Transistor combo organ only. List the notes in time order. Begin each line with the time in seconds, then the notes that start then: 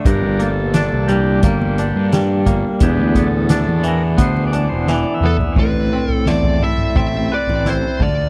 0.05 G3 D4 A#4
0.41 A4
1.07 G3 A#3 D4 G4
2.82 G#3 B3 D4 G4
3.19 A4
3.88 A#4
4.22 C5
4.47 D5
4.69 C5
4.92 D5
5.14 E5
5.62 C4 A4
8.00 D4 F4